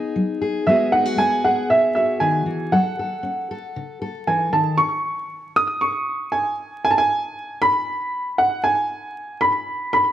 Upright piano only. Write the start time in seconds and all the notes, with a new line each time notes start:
Already playing: F#5
0.67 E5
0.92 F#5
1.18 G#5
1.44 F#5
1.70 E5
1.95 E5
2.20 G#5
2.72 F#5
4.27 G#5
4.53 A5
4.77 C#6
5.56 D#6
5.81 C#6
6.32 G#5
6.85 G#5
6.91 A5
6.98 G#5
7.62 B5
8.38 F#5
8.64 G#5
9.41 B5
9.93 B5